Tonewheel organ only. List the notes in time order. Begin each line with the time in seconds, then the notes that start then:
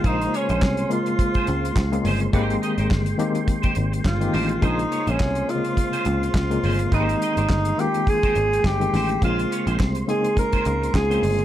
Already playing: G#3
0.04 C5 C6
2.34 G5 C6
4.63 C5
6.91 G5
9.21 C5